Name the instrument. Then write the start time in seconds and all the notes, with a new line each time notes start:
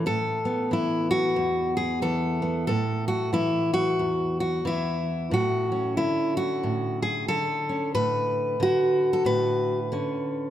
steel-string acoustic guitar
0.06 A2 A4
0.45 B3
0.71 E3 E4
1.11 F#4
1.36 E2
1.77 G#4
2.02 E3 A4
2.42 B3
2.67 A2 A4
3.08 F#4
3.33 E3 E4
3.74 F#4
3.99 E2
4.40 F#4
4.65 E3 E4
5.31 A2 F#4
5.72 C#4
5.97 D3 E4
6.37 F#4
6.63 A2
7.02 G#4
7.28 D3 A4
7.69 C#4
7.94 A2 B4
8.60 D3 F#4
9.13 A4
9.25 A2 B4
9.92 D3 C#4